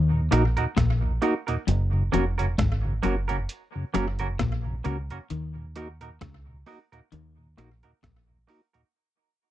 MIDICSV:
0, 0, Header, 1, 6, 480
1, 0, Start_track
1, 0, Tempo, 907990
1, 885, Time_signature, 4, 2, 24, 8
1, 5025, End_track
2, 0, Start_track
2, 0, Title_t, "Clean electric guitar"
2, 0, Program_c, 0, 27
2, 166, Note_on_c, 0, 58, 77
2, 169, Note_on_c, 0, 63, 76
2, 172, Note_on_c, 0, 66, 80
2, 175, Note_on_c, 0, 70, 86
2, 221, Note_off_c, 0, 58, 0
2, 222, Note_off_c, 0, 63, 0
2, 224, Note_off_c, 0, 66, 0
2, 225, Note_off_c, 0, 70, 0
2, 300, Note_on_c, 0, 70, 62
2, 306, Note_on_c, 0, 66, 69
2, 307, Note_on_c, 0, 63, 54
2, 310, Note_on_c, 0, 58, 52
2, 334, Note_off_c, 0, 70, 0
2, 336, Note_off_c, 0, 66, 0
2, 337, Note_off_c, 0, 63, 0
2, 339, Note_off_c, 0, 58, 0
2, 644, Note_on_c, 0, 58, 85
2, 646, Note_on_c, 0, 63, 90
2, 650, Note_on_c, 0, 66, 100
2, 651, Note_on_c, 0, 70, 88
2, 699, Note_off_c, 0, 58, 0
2, 701, Note_off_c, 0, 63, 0
2, 703, Note_off_c, 0, 66, 0
2, 703, Note_off_c, 0, 70, 0
2, 777, Note_on_c, 0, 70, 45
2, 781, Note_on_c, 0, 66, 43
2, 784, Note_on_c, 0, 63, 42
2, 786, Note_on_c, 0, 58, 47
2, 812, Note_off_c, 0, 70, 0
2, 814, Note_off_c, 0, 66, 0
2, 816, Note_off_c, 0, 63, 0
2, 817, Note_off_c, 0, 58, 0
2, 1122, Note_on_c, 0, 58, 89
2, 1124, Note_on_c, 0, 61, 84
2, 1128, Note_on_c, 0, 66, 98
2, 1130, Note_on_c, 0, 70, 85
2, 1179, Note_off_c, 0, 58, 0
2, 1180, Note_off_c, 0, 61, 0
2, 1182, Note_off_c, 0, 66, 0
2, 1183, Note_off_c, 0, 70, 0
2, 1257, Note_on_c, 0, 70, 56
2, 1261, Note_on_c, 0, 66, 57
2, 1264, Note_on_c, 0, 61, 60
2, 1268, Note_on_c, 0, 58, 46
2, 1292, Note_off_c, 0, 70, 0
2, 1294, Note_off_c, 0, 66, 0
2, 1296, Note_off_c, 0, 61, 0
2, 1298, Note_off_c, 0, 58, 0
2, 1600, Note_on_c, 0, 58, 94
2, 1603, Note_on_c, 0, 61, 89
2, 1606, Note_on_c, 0, 66, 86
2, 1609, Note_on_c, 0, 70, 98
2, 1658, Note_off_c, 0, 58, 0
2, 1659, Note_off_c, 0, 61, 0
2, 1661, Note_off_c, 0, 66, 0
2, 1662, Note_off_c, 0, 70, 0
2, 1734, Note_on_c, 0, 70, 70
2, 1739, Note_on_c, 0, 66, 61
2, 1740, Note_on_c, 0, 61, 62
2, 1743, Note_on_c, 0, 58, 56
2, 1770, Note_off_c, 0, 70, 0
2, 1773, Note_off_c, 0, 66, 0
2, 1774, Note_off_c, 0, 61, 0
2, 1775, Note_off_c, 0, 58, 0
2, 2081, Note_on_c, 0, 58, 75
2, 2084, Note_on_c, 0, 61, 76
2, 2087, Note_on_c, 0, 66, 76
2, 2090, Note_on_c, 0, 70, 84
2, 2138, Note_off_c, 0, 58, 0
2, 2140, Note_off_c, 0, 61, 0
2, 2141, Note_off_c, 0, 66, 0
2, 2143, Note_off_c, 0, 70, 0
2, 2218, Note_on_c, 0, 70, 59
2, 2223, Note_on_c, 0, 66, 55
2, 2224, Note_on_c, 0, 61, 48
2, 2227, Note_on_c, 0, 58, 48
2, 2253, Note_off_c, 0, 70, 0
2, 2255, Note_off_c, 0, 66, 0
2, 2256, Note_off_c, 0, 61, 0
2, 2257, Note_off_c, 0, 58, 0
2, 2560, Note_on_c, 0, 58, 93
2, 2564, Note_on_c, 0, 61, 85
2, 2566, Note_on_c, 0, 66, 94
2, 2568, Note_on_c, 0, 70, 103
2, 2618, Note_off_c, 0, 58, 0
2, 2620, Note_off_c, 0, 61, 0
2, 2621, Note_off_c, 0, 66, 0
2, 2622, Note_off_c, 0, 70, 0
2, 2700, Note_on_c, 0, 70, 57
2, 2704, Note_on_c, 0, 66, 49
2, 2707, Note_on_c, 0, 61, 47
2, 2708, Note_on_c, 0, 58, 46
2, 2734, Note_off_c, 0, 70, 0
2, 2736, Note_off_c, 0, 66, 0
2, 2737, Note_off_c, 0, 61, 0
2, 2738, Note_off_c, 0, 58, 0
2, 3044, Note_on_c, 0, 58, 78
2, 3047, Note_on_c, 0, 63, 80
2, 3050, Note_on_c, 0, 66, 86
2, 3052, Note_on_c, 0, 70, 90
2, 3100, Note_off_c, 0, 58, 0
2, 3101, Note_off_c, 0, 63, 0
2, 3103, Note_off_c, 0, 66, 0
2, 3104, Note_off_c, 0, 70, 0
2, 3178, Note_on_c, 0, 70, 64
2, 3182, Note_on_c, 0, 66, 54
2, 3183, Note_on_c, 0, 63, 51
2, 3187, Note_on_c, 0, 58, 53
2, 3213, Note_off_c, 0, 70, 0
2, 3215, Note_off_c, 0, 63, 0
2, 3215, Note_off_c, 0, 66, 0
2, 3217, Note_off_c, 0, 58, 0
2, 3524, Note_on_c, 0, 58, 76
2, 3526, Note_on_c, 0, 63, 93
2, 3530, Note_on_c, 0, 66, 84
2, 3532, Note_on_c, 0, 70, 100
2, 3580, Note_off_c, 0, 58, 0
2, 3581, Note_off_c, 0, 63, 0
2, 3583, Note_off_c, 0, 66, 0
2, 3584, Note_off_c, 0, 70, 0
2, 3660, Note_on_c, 0, 70, 62
2, 3664, Note_on_c, 0, 66, 57
2, 3666, Note_on_c, 0, 63, 50
2, 3668, Note_on_c, 0, 58, 53
2, 3694, Note_off_c, 0, 70, 0
2, 3696, Note_off_c, 0, 66, 0
2, 3697, Note_off_c, 0, 63, 0
2, 3698, Note_off_c, 0, 58, 0
2, 4005, Note_on_c, 0, 58, 80
2, 4006, Note_on_c, 0, 63, 79
2, 4011, Note_on_c, 0, 66, 69
2, 4013, Note_on_c, 0, 70, 75
2, 4060, Note_off_c, 0, 58, 0
2, 4061, Note_off_c, 0, 63, 0
2, 4063, Note_off_c, 0, 66, 0
2, 4064, Note_off_c, 0, 70, 0
2, 4140, Note_on_c, 0, 70, 61
2, 4144, Note_on_c, 0, 66, 57
2, 4147, Note_on_c, 0, 63, 52
2, 4148, Note_on_c, 0, 58, 52
2, 4174, Note_off_c, 0, 70, 0
2, 4176, Note_off_c, 0, 66, 0
2, 4177, Note_off_c, 0, 63, 0
2, 4178, Note_off_c, 0, 58, 0
2, 4480, Note_on_c, 0, 58, 90
2, 4484, Note_on_c, 0, 63, 90
2, 4488, Note_on_c, 0, 66, 86
2, 4490, Note_on_c, 0, 70, 110
2, 4538, Note_off_c, 0, 58, 0
2, 4540, Note_off_c, 0, 63, 0
2, 4542, Note_off_c, 0, 66, 0
2, 4543, Note_off_c, 0, 70, 0
2, 4617, Note_on_c, 0, 70, 51
2, 4620, Note_on_c, 0, 66, 48
2, 4624, Note_on_c, 0, 63, 42
2, 4626, Note_on_c, 0, 58, 43
2, 4653, Note_off_c, 0, 70, 0
2, 4654, Note_off_c, 0, 66, 0
2, 4656, Note_off_c, 0, 63, 0
2, 4657, Note_off_c, 0, 58, 0
2, 5025, End_track
3, 0, Start_track
3, 0, Title_t, "Tonewheel organ"
3, 0, Program_c, 1, 16
3, 64, Note_on_c, 1, 39, 61
3, 64, Note_on_c, 1, 46, 62
3, 112, Note_off_c, 1, 39, 0
3, 113, Note_off_c, 1, 46, 0
3, 167, Note_on_c, 1, 58, 74
3, 170, Note_on_c, 1, 63, 67
3, 172, Note_on_c, 1, 66, 85
3, 231, Note_off_c, 1, 58, 0
3, 232, Note_off_c, 1, 63, 0
3, 233, Note_off_c, 1, 66, 0
3, 304, Note_on_c, 1, 39, 59
3, 304, Note_on_c, 1, 46, 67
3, 352, Note_off_c, 1, 46, 0
3, 353, Note_off_c, 1, 39, 0
3, 542, Note_on_c, 1, 39, 57
3, 542, Note_on_c, 1, 46, 58
3, 592, Note_off_c, 1, 39, 0
3, 592, Note_off_c, 1, 46, 0
3, 646, Note_on_c, 1, 58, 75
3, 648, Note_on_c, 1, 63, 64
3, 648, Note_on_c, 1, 66, 80
3, 710, Note_off_c, 1, 58, 0
3, 712, Note_off_c, 1, 63, 0
3, 712, Note_off_c, 1, 66, 0
3, 785, Note_on_c, 1, 46, 59
3, 787, Note_on_c, 1, 39, 65
3, 833, Note_off_c, 1, 46, 0
3, 834, Note_off_c, 1, 39, 0
3, 1022, Note_on_c, 1, 42, 61
3, 1022, Note_on_c, 1, 49, 57
3, 1072, Note_off_c, 1, 42, 0
3, 1072, Note_off_c, 1, 49, 0
3, 1128, Note_on_c, 1, 58, 70
3, 1129, Note_on_c, 1, 61, 56
3, 1131, Note_on_c, 1, 66, 68
3, 1191, Note_off_c, 1, 58, 0
3, 1192, Note_off_c, 1, 61, 0
3, 1193, Note_off_c, 1, 66, 0
3, 1267, Note_on_c, 1, 42, 59
3, 1267, Note_on_c, 1, 49, 52
3, 1314, Note_off_c, 1, 42, 0
3, 1314, Note_off_c, 1, 49, 0
3, 1506, Note_on_c, 1, 42, 59
3, 1507, Note_on_c, 1, 49, 56
3, 1554, Note_off_c, 1, 42, 0
3, 1554, Note_off_c, 1, 49, 0
3, 1610, Note_on_c, 1, 58, 74
3, 1610, Note_on_c, 1, 61, 64
3, 1612, Note_on_c, 1, 66, 71
3, 1672, Note_off_c, 1, 58, 0
3, 1673, Note_off_c, 1, 61, 0
3, 1674, Note_off_c, 1, 66, 0
3, 1748, Note_on_c, 1, 42, 56
3, 1749, Note_on_c, 1, 49, 51
3, 1794, Note_off_c, 1, 42, 0
3, 1795, Note_off_c, 1, 49, 0
3, 1985, Note_on_c, 1, 42, 59
3, 1987, Note_on_c, 1, 49, 65
3, 2033, Note_off_c, 1, 42, 0
3, 2034, Note_off_c, 1, 49, 0
3, 2084, Note_on_c, 1, 58, 69
3, 2086, Note_on_c, 1, 61, 77
3, 2088, Note_on_c, 1, 66, 88
3, 2149, Note_off_c, 1, 58, 0
3, 2150, Note_off_c, 1, 61, 0
3, 2151, Note_off_c, 1, 66, 0
3, 2222, Note_on_c, 1, 42, 55
3, 2224, Note_on_c, 1, 49, 57
3, 2272, Note_off_c, 1, 42, 0
3, 2272, Note_off_c, 1, 49, 0
3, 2464, Note_on_c, 1, 42, 53
3, 2464, Note_on_c, 1, 49, 63
3, 2513, Note_off_c, 1, 42, 0
3, 2513, Note_off_c, 1, 49, 0
3, 2568, Note_on_c, 1, 58, 73
3, 2570, Note_on_c, 1, 61, 63
3, 2571, Note_on_c, 1, 66, 74
3, 2631, Note_off_c, 1, 58, 0
3, 2632, Note_off_c, 1, 61, 0
3, 2633, Note_off_c, 1, 66, 0
3, 2699, Note_on_c, 1, 42, 60
3, 2703, Note_on_c, 1, 49, 57
3, 2750, Note_off_c, 1, 42, 0
3, 2752, Note_off_c, 1, 49, 0
3, 2938, Note_on_c, 1, 39, 59
3, 2939, Note_on_c, 1, 46, 53
3, 2990, Note_off_c, 1, 39, 0
3, 2990, Note_off_c, 1, 46, 0
3, 3044, Note_on_c, 1, 63, 67
3, 3045, Note_on_c, 1, 58, 66
3, 3048, Note_on_c, 1, 66, 79
3, 3110, Note_off_c, 1, 58, 0
3, 3110, Note_off_c, 1, 63, 0
3, 3111, Note_off_c, 1, 66, 0
3, 3177, Note_on_c, 1, 46, 58
3, 3179, Note_on_c, 1, 39, 58
3, 3229, Note_off_c, 1, 46, 0
3, 3230, Note_off_c, 1, 39, 0
3, 3417, Note_on_c, 1, 46, 53
3, 3418, Note_on_c, 1, 39, 61
3, 3469, Note_off_c, 1, 39, 0
3, 3469, Note_off_c, 1, 46, 0
3, 3522, Note_on_c, 1, 58, 62
3, 3524, Note_on_c, 1, 63, 66
3, 3526, Note_on_c, 1, 66, 73
3, 3589, Note_off_c, 1, 58, 0
3, 3589, Note_off_c, 1, 63, 0
3, 3590, Note_off_c, 1, 66, 0
3, 3660, Note_on_c, 1, 46, 59
3, 3661, Note_on_c, 1, 39, 54
3, 3711, Note_off_c, 1, 39, 0
3, 3711, Note_off_c, 1, 46, 0
3, 3902, Note_on_c, 1, 46, 63
3, 3904, Note_on_c, 1, 39, 57
3, 3952, Note_off_c, 1, 46, 0
3, 3953, Note_off_c, 1, 39, 0
3, 4008, Note_on_c, 1, 58, 77
3, 4010, Note_on_c, 1, 63, 72
3, 4010, Note_on_c, 1, 66, 84
3, 4072, Note_off_c, 1, 58, 0
3, 4073, Note_off_c, 1, 63, 0
3, 4073, Note_off_c, 1, 66, 0
3, 4146, Note_on_c, 1, 39, 58
3, 4148, Note_on_c, 1, 46, 56
3, 4194, Note_off_c, 1, 39, 0
3, 4195, Note_off_c, 1, 46, 0
3, 4386, Note_on_c, 1, 46, 50
3, 4387, Note_on_c, 1, 39, 51
3, 4434, Note_off_c, 1, 39, 0
3, 4434, Note_off_c, 1, 46, 0
3, 4489, Note_on_c, 1, 58, 69
3, 4491, Note_on_c, 1, 63, 64
3, 4492, Note_on_c, 1, 66, 74
3, 4552, Note_off_c, 1, 58, 0
3, 4553, Note_off_c, 1, 63, 0
3, 4554, Note_off_c, 1, 66, 0
3, 4625, Note_on_c, 1, 39, 60
3, 4625, Note_on_c, 1, 46, 58
3, 4673, Note_off_c, 1, 39, 0
3, 4673, Note_off_c, 1, 46, 0
3, 5025, End_track
4, 0, Start_track
4, 0, Title_t, "Clean electric guitar"
4, 0, Program_c, 2, 27
4, 0, Note_on_c, 2, 51, 77
4, 70, Note_off_c, 2, 51, 0
4, 164, Note_on_c, 2, 46, 69
4, 246, Note_off_c, 2, 46, 0
4, 405, Note_on_c, 2, 46, 84
4, 549, Note_off_c, 2, 46, 0
4, 884, Note_on_c, 2, 42, 72
4, 1028, Note_off_c, 2, 42, 0
4, 1125, Note_on_c, 2, 41, 78
4, 1269, Note_off_c, 2, 41, 0
4, 1368, Note_on_c, 2, 44, 82
4, 1511, Note_off_c, 2, 44, 0
4, 1604, Note_on_c, 2, 42, 72
4, 1749, Note_off_c, 2, 42, 0
4, 2084, Note_on_c, 2, 42, 82
4, 2228, Note_off_c, 2, 42, 0
4, 2325, Note_on_c, 2, 46, 89
4, 2469, Note_off_c, 2, 46, 0
4, 2564, Note_on_c, 2, 49, 76
4, 2646, Note_off_c, 2, 49, 0
4, 2804, Note_on_c, 2, 51, 85
4, 2948, Note_off_c, 2, 51, 0
4, 3283, Note_on_c, 2, 49, 74
4, 3428, Note_off_c, 2, 49, 0
4, 3763, Note_on_c, 2, 51, 92
4, 3908, Note_off_c, 2, 51, 0
4, 4004, Note_on_c, 2, 46, 77
4, 4086, Note_off_c, 2, 46, 0
4, 4244, Note_on_c, 2, 46, 77
4, 4389, Note_off_c, 2, 46, 0
4, 5025, End_track
5, 0, Start_track
5, 0, Title_t, "Fingered electric bass"
5, 0, Program_c, 3, 33
5, 0, Note_on_c, 3, 39, 103
5, 150, Note_off_c, 3, 39, 0
5, 173, Note_on_c, 3, 34, 93
5, 294, Note_off_c, 3, 34, 0
5, 408, Note_on_c, 3, 34, 92
5, 627, Note_off_c, 3, 34, 0
5, 891, Note_on_c, 3, 30, 116
5, 1109, Note_off_c, 3, 30, 0
5, 1132, Note_on_c, 3, 29, 91
5, 1349, Note_off_c, 3, 29, 0
5, 1367, Note_on_c, 3, 32, 106
5, 1587, Note_off_c, 3, 32, 0
5, 1612, Note_on_c, 3, 30, 80
5, 1829, Note_off_c, 3, 30, 0
5, 2091, Note_on_c, 3, 30, 88
5, 2309, Note_off_c, 3, 30, 0
5, 2324, Note_on_c, 3, 34, 98
5, 2545, Note_off_c, 3, 34, 0
5, 2569, Note_on_c, 3, 37, 93
5, 2691, Note_off_c, 3, 37, 0
5, 2808, Note_on_c, 3, 39, 114
5, 3266, Note_off_c, 3, 39, 0
5, 3286, Note_on_c, 3, 37, 92
5, 3506, Note_off_c, 3, 37, 0
5, 3770, Note_on_c, 3, 39, 115
5, 3988, Note_off_c, 3, 39, 0
5, 4010, Note_on_c, 3, 34, 88
5, 4132, Note_off_c, 3, 34, 0
5, 4247, Note_on_c, 3, 34, 84
5, 4467, Note_off_c, 3, 34, 0
5, 5025, End_track
6, 0, Start_track
6, 0, Title_t, "Drums"
6, 169, Note_on_c, 9, 42, 97
6, 172, Note_on_c, 9, 37, 57
6, 222, Note_off_c, 9, 42, 0
6, 225, Note_off_c, 9, 37, 0
6, 300, Note_on_c, 9, 42, 51
6, 353, Note_off_c, 9, 42, 0
6, 406, Note_on_c, 9, 36, 96
6, 410, Note_on_c, 9, 37, 99
6, 410, Note_on_c, 9, 42, 82
6, 459, Note_off_c, 9, 36, 0
6, 463, Note_off_c, 9, 37, 0
6, 463, Note_off_c, 9, 42, 0
6, 645, Note_on_c, 9, 42, 65
6, 698, Note_off_c, 9, 42, 0
6, 782, Note_on_c, 9, 42, 52
6, 835, Note_off_c, 9, 42, 0
6, 887, Note_on_c, 9, 42, 104
6, 940, Note_off_c, 9, 42, 0
6, 1129, Note_on_c, 9, 42, 77
6, 1182, Note_off_c, 9, 42, 0
6, 1264, Note_on_c, 9, 42, 50
6, 1317, Note_off_c, 9, 42, 0
6, 1365, Note_on_c, 9, 36, 106
6, 1367, Note_on_c, 9, 42, 106
6, 1370, Note_on_c, 9, 37, 120
6, 1418, Note_off_c, 9, 36, 0
6, 1420, Note_off_c, 9, 42, 0
6, 1423, Note_off_c, 9, 37, 0
6, 1603, Note_on_c, 9, 42, 77
6, 1656, Note_off_c, 9, 42, 0
6, 1740, Note_on_c, 9, 42, 49
6, 1792, Note_off_c, 9, 42, 0
6, 1845, Note_on_c, 9, 42, 83
6, 1898, Note_off_c, 9, 42, 0
6, 2085, Note_on_c, 9, 42, 79
6, 2088, Note_on_c, 9, 37, 59
6, 2138, Note_off_c, 9, 42, 0
6, 2141, Note_off_c, 9, 37, 0
6, 2214, Note_on_c, 9, 42, 49
6, 2266, Note_off_c, 9, 42, 0
6, 2322, Note_on_c, 9, 36, 97
6, 2323, Note_on_c, 9, 37, 110
6, 2323, Note_on_c, 9, 42, 80
6, 2375, Note_off_c, 9, 36, 0
6, 2376, Note_off_c, 9, 37, 0
6, 2376, Note_off_c, 9, 42, 0
6, 2562, Note_on_c, 9, 42, 76
6, 2615, Note_off_c, 9, 42, 0
6, 2698, Note_on_c, 9, 42, 49
6, 2751, Note_off_c, 9, 42, 0
6, 2802, Note_on_c, 9, 42, 88
6, 2855, Note_off_c, 9, 42, 0
6, 3043, Note_on_c, 9, 42, 86
6, 3096, Note_off_c, 9, 42, 0
6, 3177, Note_on_c, 9, 42, 47
6, 3229, Note_off_c, 9, 42, 0
6, 3283, Note_on_c, 9, 42, 95
6, 3284, Note_on_c, 9, 36, 109
6, 3286, Note_on_c, 9, 37, 99
6, 3336, Note_off_c, 9, 36, 0
6, 3336, Note_off_c, 9, 42, 0
6, 3339, Note_off_c, 9, 37, 0
6, 3523, Note_on_c, 9, 46, 50
6, 3576, Note_off_c, 9, 46, 0
6, 3662, Note_on_c, 9, 42, 43
6, 3715, Note_off_c, 9, 42, 0
6, 3764, Note_on_c, 9, 42, 75
6, 3817, Note_off_c, 9, 42, 0
6, 4008, Note_on_c, 9, 42, 85
6, 4011, Note_on_c, 9, 37, 64
6, 4061, Note_off_c, 9, 42, 0
6, 4064, Note_off_c, 9, 37, 0
6, 4139, Note_on_c, 9, 42, 44
6, 4192, Note_off_c, 9, 42, 0
6, 4245, Note_on_c, 9, 36, 103
6, 4249, Note_on_c, 9, 37, 100
6, 4249, Note_on_c, 9, 42, 74
6, 4298, Note_off_c, 9, 36, 0
6, 4302, Note_off_c, 9, 37, 0
6, 4302, Note_off_c, 9, 42, 0
6, 4486, Note_on_c, 9, 46, 73
6, 4539, Note_off_c, 9, 46, 0
6, 4621, Note_on_c, 9, 42, 52
6, 4674, Note_off_c, 9, 42, 0
6, 5025, End_track
0, 0, End_of_file